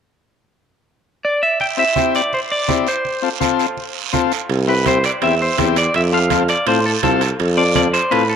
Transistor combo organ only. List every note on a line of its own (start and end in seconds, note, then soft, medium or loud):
1.77 1.84 C4 medium
1.77 1.84 E4 medium
1.77 1.84 G4 medium
1.96 2.21 C4 medium
1.96 2.22 E4 medium
1.96 2.22 G4 medium
2.68 2.87 C4 medium
2.68 2.88 E4 medium
2.68 2.88 G4 medium
3.22 3.29 C4 medium
3.22 3.29 F4 medium
3.22 3.30 A4 medium
3.40 3.66 C4 medium
3.40 3.66 F4 medium
3.40 3.66 A4 medium
4.13 4.32 C4 medium
4.13 4.32 F4 medium
4.13 4.33 A4 medium
4.67 4.74 C4 medium
4.67 4.74 E4 medium
4.67 4.74 G4 medium
4.86 4.99 C4 medium
4.86 4.99 E4 medium
4.86 4.99 G4 medium
5.22 5.35 C4 medium
5.22 5.35 E4 medium
5.22 5.35 G4 medium
5.58 5.77 C4 medium
5.58 5.77 E4 medium
5.58 5.77 G4 medium
6.13 6.19 C4 medium
6.13 6.19 F4 medium
6.13 6.19 A4 medium
6.30 6.43 C4 medium
6.30 6.43 F4 medium
6.30 6.44 A4 medium
6.67 6.80 C4 medium
6.67 6.80 F4 medium
6.67 6.80 A4 medium
7.03 7.22 C4 medium
7.03 7.22 F4 medium
7.03 7.22 A4 medium
7.57 7.64 C4 medium
7.57 7.64 F4 medium
7.57 7.64 A4 medium
7.75 7.88 C4 medium
7.75 7.88 F4 medium
7.75 7.88 A4 medium
8.11 8.24 C4 medium
8.11 8.24 F4 medium
8.11 8.25 A4 medium